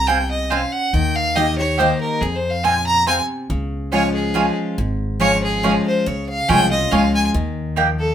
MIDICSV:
0, 0, Header, 1, 5, 480
1, 0, Start_track
1, 0, Tempo, 427350
1, 1052, Time_signature, 3, 2, 24, 8
1, 9150, End_track
2, 0, Start_track
2, 0, Title_t, "Fiddle"
2, 0, Program_c, 0, 110
2, 83, Note_on_c, 0, 79, 89
2, 341, Note_off_c, 0, 79, 0
2, 347, Note_on_c, 0, 75, 89
2, 569, Note_on_c, 0, 77, 83
2, 586, Note_off_c, 0, 75, 0
2, 815, Note_on_c, 0, 78, 93
2, 832, Note_off_c, 0, 77, 0
2, 1048, Note_on_c, 0, 79, 95
2, 1065, Note_off_c, 0, 78, 0
2, 1299, Note_on_c, 0, 77, 108
2, 1316, Note_off_c, 0, 79, 0
2, 1527, Note_on_c, 0, 75, 93
2, 1544, Note_off_c, 0, 77, 0
2, 1773, Note_off_c, 0, 75, 0
2, 1780, Note_on_c, 0, 73, 88
2, 2012, Note_on_c, 0, 72, 79
2, 2029, Note_off_c, 0, 73, 0
2, 2255, Note_off_c, 0, 72, 0
2, 2262, Note_on_c, 0, 70, 90
2, 2485, Note_on_c, 0, 68, 76
2, 2502, Note_off_c, 0, 70, 0
2, 2647, Note_on_c, 0, 72, 74
2, 2664, Note_off_c, 0, 68, 0
2, 2811, Note_on_c, 0, 77, 86
2, 2828, Note_off_c, 0, 72, 0
2, 2969, Note_on_c, 0, 80, 98
2, 2986, Note_off_c, 0, 77, 0
2, 3213, Note_off_c, 0, 80, 0
2, 3220, Note_on_c, 0, 82, 109
2, 3435, Note_off_c, 0, 82, 0
2, 3455, Note_on_c, 0, 80, 92
2, 3607, Note_off_c, 0, 80, 0
2, 4407, Note_on_c, 0, 73, 95
2, 4646, Note_off_c, 0, 73, 0
2, 4660, Note_on_c, 0, 68, 74
2, 5111, Note_off_c, 0, 68, 0
2, 5846, Note_on_c, 0, 73, 113
2, 6086, Note_off_c, 0, 73, 0
2, 6111, Note_on_c, 0, 68, 93
2, 6557, Note_off_c, 0, 68, 0
2, 6602, Note_on_c, 0, 72, 77
2, 6817, Note_on_c, 0, 73, 70
2, 6834, Note_off_c, 0, 72, 0
2, 7062, Note_off_c, 0, 73, 0
2, 7069, Note_on_c, 0, 77, 99
2, 7292, Note_on_c, 0, 79, 112
2, 7309, Note_off_c, 0, 77, 0
2, 7536, Note_off_c, 0, 79, 0
2, 7543, Note_on_c, 0, 75, 90
2, 7771, Note_on_c, 0, 77, 92
2, 7787, Note_off_c, 0, 75, 0
2, 8023, Note_off_c, 0, 77, 0
2, 8030, Note_on_c, 0, 80, 92
2, 8166, Note_off_c, 0, 80, 0
2, 8982, Note_on_c, 0, 69, 77
2, 9150, Note_off_c, 0, 69, 0
2, 9150, End_track
3, 0, Start_track
3, 0, Title_t, "Mandolin"
3, 0, Program_c, 1, 25
3, 79, Note_on_c, 1, 60, 86
3, 87, Note_on_c, 1, 65, 98
3, 90, Note_on_c, 1, 72, 100
3, 92, Note_on_c, 1, 80, 103
3, 193, Note_off_c, 1, 60, 0
3, 197, Note_off_c, 1, 65, 0
3, 198, Note_off_c, 1, 72, 0
3, 199, Note_off_c, 1, 80, 0
3, 564, Note_on_c, 1, 60, 96
3, 568, Note_on_c, 1, 65, 99
3, 573, Note_on_c, 1, 72, 101
3, 575, Note_on_c, 1, 80, 93
3, 675, Note_off_c, 1, 60, 0
3, 677, Note_off_c, 1, 65, 0
3, 680, Note_off_c, 1, 72, 0
3, 681, Note_off_c, 1, 80, 0
3, 1518, Note_on_c, 1, 58, 92
3, 1523, Note_on_c, 1, 67, 85
3, 1527, Note_on_c, 1, 79, 106
3, 1528, Note_on_c, 1, 75, 92
3, 1632, Note_off_c, 1, 58, 0
3, 1635, Note_off_c, 1, 67, 0
3, 1637, Note_off_c, 1, 79, 0
3, 1638, Note_off_c, 1, 75, 0
3, 1994, Note_on_c, 1, 58, 88
3, 1997, Note_on_c, 1, 67, 93
3, 2003, Note_on_c, 1, 75, 94
3, 2006, Note_on_c, 1, 79, 107
3, 2111, Note_off_c, 1, 58, 0
3, 2112, Note_off_c, 1, 67, 0
3, 2115, Note_off_c, 1, 75, 0
3, 2117, Note_off_c, 1, 79, 0
3, 2959, Note_on_c, 1, 60, 91
3, 2964, Note_on_c, 1, 65, 88
3, 2970, Note_on_c, 1, 72, 90
3, 2972, Note_on_c, 1, 80, 107
3, 3073, Note_off_c, 1, 60, 0
3, 3076, Note_off_c, 1, 65, 0
3, 3079, Note_off_c, 1, 72, 0
3, 3080, Note_off_c, 1, 80, 0
3, 3442, Note_on_c, 1, 60, 95
3, 3448, Note_on_c, 1, 65, 90
3, 3449, Note_on_c, 1, 72, 96
3, 3452, Note_on_c, 1, 80, 93
3, 3556, Note_off_c, 1, 60, 0
3, 3558, Note_off_c, 1, 65, 0
3, 3559, Note_off_c, 1, 72, 0
3, 3560, Note_off_c, 1, 80, 0
3, 4401, Note_on_c, 1, 61, 83
3, 4410, Note_on_c, 1, 65, 100
3, 4410, Note_on_c, 1, 73, 101
3, 4416, Note_on_c, 1, 80, 90
3, 4515, Note_off_c, 1, 61, 0
3, 4520, Note_off_c, 1, 65, 0
3, 4520, Note_off_c, 1, 73, 0
3, 4523, Note_off_c, 1, 80, 0
3, 4877, Note_on_c, 1, 61, 84
3, 4883, Note_on_c, 1, 65, 100
3, 4887, Note_on_c, 1, 73, 97
3, 4891, Note_on_c, 1, 80, 98
3, 4994, Note_off_c, 1, 61, 0
3, 4997, Note_off_c, 1, 65, 0
3, 4999, Note_off_c, 1, 73, 0
3, 5001, Note_off_c, 1, 80, 0
3, 5841, Note_on_c, 1, 61, 87
3, 5848, Note_on_c, 1, 65, 100
3, 5848, Note_on_c, 1, 73, 106
3, 5854, Note_on_c, 1, 80, 97
3, 5956, Note_off_c, 1, 61, 0
3, 5959, Note_off_c, 1, 65, 0
3, 5960, Note_off_c, 1, 73, 0
3, 5963, Note_off_c, 1, 80, 0
3, 6330, Note_on_c, 1, 61, 99
3, 6333, Note_on_c, 1, 65, 90
3, 6337, Note_on_c, 1, 73, 95
3, 6342, Note_on_c, 1, 80, 107
3, 6441, Note_off_c, 1, 61, 0
3, 6442, Note_off_c, 1, 65, 0
3, 6444, Note_off_c, 1, 73, 0
3, 6446, Note_off_c, 1, 80, 0
3, 7283, Note_on_c, 1, 61, 105
3, 7289, Note_on_c, 1, 65, 93
3, 7294, Note_on_c, 1, 73, 95
3, 7295, Note_on_c, 1, 80, 104
3, 7397, Note_off_c, 1, 61, 0
3, 7400, Note_off_c, 1, 65, 0
3, 7402, Note_off_c, 1, 73, 0
3, 7403, Note_off_c, 1, 80, 0
3, 7766, Note_on_c, 1, 61, 92
3, 7769, Note_on_c, 1, 65, 101
3, 7776, Note_on_c, 1, 73, 100
3, 7779, Note_on_c, 1, 80, 101
3, 7878, Note_off_c, 1, 61, 0
3, 7880, Note_off_c, 1, 65, 0
3, 7883, Note_off_c, 1, 73, 0
3, 7885, Note_off_c, 1, 80, 0
3, 8719, Note_on_c, 1, 58, 102
3, 8724, Note_on_c, 1, 67, 106
3, 8729, Note_on_c, 1, 75, 91
3, 8735, Note_on_c, 1, 79, 110
3, 8834, Note_off_c, 1, 58, 0
3, 8836, Note_off_c, 1, 67, 0
3, 8839, Note_off_c, 1, 75, 0
3, 8842, Note_off_c, 1, 79, 0
3, 9150, End_track
4, 0, Start_track
4, 0, Title_t, "Steel-string acoustic guitar"
4, 0, Program_c, 2, 25
4, 107, Note_on_c, 2, 48, 81
4, 557, Note_off_c, 2, 48, 0
4, 580, Note_on_c, 2, 61, 87
4, 1034, Note_off_c, 2, 61, 0
4, 1054, Note_on_c, 2, 51, 88
4, 1514, Note_off_c, 2, 51, 0
4, 1528, Note_on_c, 2, 51, 78
4, 1533, Note_on_c, 2, 58, 83
4, 1538, Note_on_c, 2, 63, 78
4, 1545, Note_on_c, 2, 67, 97
4, 1771, Note_off_c, 2, 67, 0
4, 1773, Note_off_c, 2, 51, 0
4, 1776, Note_off_c, 2, 58, 0
4, 1778, Note_off_c, 2, 63, 0
4, 1785, Note_on_c, 2, 67, 64
4, 1804, Note_on_c, 2, 63, 53
4, 2004, Note_off_c, 2, 67, 0
4, 2013, Note_off_c, 2, 63, 0
4, 2015, Note_on_c, 2, 51, 84
4, 2021, Note_on_c, 2, 58, 93
4, 2028, Note_on_c, 2, 63, 85
4, 2031, Note_on_c, 2, 67, 85
4, 2472, Note_off_c, 2, 51, 0
4, 2475, Note_off_c, 2, 58, 0
4, 2478, Note_off_c, 2, 63, 0
4, 2480, Note_off_c, 2, 67, 0
4, 2499, Note_on_c, 2, 41, 87
4, 2974, Note_on_c, 2, 46, 81
4, 3412, Note_off_c, 2, 41, 0
4, 3432, Note_off_c, 2, 46, 0
4, 3451, Note_on_c, 2, 48, 81
4, 3911, Note_off_c, 2, 48, 0
4, 3930, Note_on_c, 2, 49, 85
4, 4406, Note_on_c, 2, 53, 74
4, 4410, Note_on_c, 2, 56, 74
4, 4417, Note_on_c, 2, 61, 86
4, 4422, Note_on_c, 2, 65, 100
4, 4848, Note_off_c, 2, 49, 0
4, 4861, Note_off_c, 2, 53, 0
4, 4870, Note_off_c, 2, 56, 0
4, 4874, Note_off_c, 2, 61, 0
4, 4875, Note_on_c, 2, 53, 87
4, 4877, Note_off_c, 2, 65, 0
4, 4884, Note_on_c, 2, 56, 86
4, 4886, Note_on_c, 2, 61, 81
4, 4894, Note_on_c, 2, 65, 95
4, 5343, Note_off_c, 2, 53, 0
4, 5348, Note_off_c, 2, 56, 0
4, 5349, Note_off_c, 2, 61, 0
4, 5353, Note_off_c, 2, 65, 0
4, 5370, Note_on_c, 2, 44, 90
4, 5836, Note_on_c, 2, 53, 82
4, 5845, Note_on_c, 2, 56, 89
4, 5851, Note_on_c, 2, 61, 92
4, 5856, Note_on_c, 2, 65, 90
4, 6288, Note_off_c, 2, 44, 0
4, 6304, Note_off_c, 2, 53, 0
4, 6308, Note_off_c, 2, 56, 0
4, 6311, Note_off_c, 2, 61, 0
4, 6314, Note_off_c, 2, 65, 0
4, 6325, Note_on_c, 2, 53, 78
4, 6330, Note_on_c, 2, 56, 80
4, 6337, Note_on_c, 2, 61, 83
4, 6341, Note_on_c, 2, 65, 82
4, 6788, Note_off_c, 2, 53, 0
4, 6791, Note_off_c, 2, 56, 0
4, 6794, Note_off_c, 2, 61, 0
4, 6796, Note_off_c, 2, 65, 0
4, 6810, Note_on_c, 2, 49, 94
4, 7282, Note_on_c, 2, 53, 80
4, 7291, Note_on_c, 2, 56, 84
4, 7299, Note_on_c, 2, 61, 82
4, 7304, Note_on_c, 2, 65, 95
4, 7526, Note_off_c, 2, 65, 0
4, 7532, Note_off_c, 2, 53, 0
4, 7536, Note_off_c, 2, 56, 0
4, 7540, Note_on_c, 2, 65, 57
4, 7541, Note_off_c, 2, 61, 0
4, 7557, Note_on_c, 2, 61, 54
4, 7728, Note_off_c, 2, 49, 0
4, 7763, Note_off_c, 2, 61, 0
4, 7763, Note_off_c, 2, 65, 0
4, 7764, Note_on_c, 2, 53, 78
4, 7773, Note_on_c, 2, 56, 77
4, 7777, Note_on_c, 2, 61, 85
4, 7780, Note_on_c, 2, 65, 96
4, 8227, Note_off_c, 2, 53, 0
4, 8232, Note_off_c, 2, 56, 0
4, 8234, Note_off_c, 2, 61, 0
4, 8235, Note_off_c, 2, 65, 0
4, 8249, Note_on_c, 2, 51, 92
4, 8729, Note_on_c, 2, 53, 77
4, 9150, Note_off_c, 2, 51, 0
4, 9150, Note_off_c, 2, 53, 0
4, 9150, End_track
5, 0, Start_track
5, 0, Title_t, "Upright bass"
5, 0, Program_c, 3, 32
5, 0, Note_on_c, 3, 36, 74
5, 699, Note_off_c, 3, 36, 0
5, 1049, Note_on_c, 3, 39, 83
5, 2142, Note_off_c, 3, 39, 0
5, 2487, Note_on_c, 3, 41, 92
5, 3582, Note_off_c, 3, 41, 0
5, 3928, Note_on_c, 3, 37, 83
5, 5023, Note_off_c, 3, 37, 0
5, 5370, Note_on_c, 3, 32, 80
5, 6464, Note_off_c, 3, 32, 0
5, 6817, Note_on_c, 3, 37, 76
5, 7181, Note_off_c, 3, 37, 0
5, 7295, Note_on_c, 3, 36, 90
5, 7704, Note_off_c, 3, 36, 0
5, 7775, Note_on_c, 3, 37, 93
5, 8183, Note_off_c, 3, 37, 0
5, 8250, Note_on_c, 3, 39, 83
5, 9150, Note_off_c, 3, 39, 0
5, 9150, End_track
0, 0, End_of_file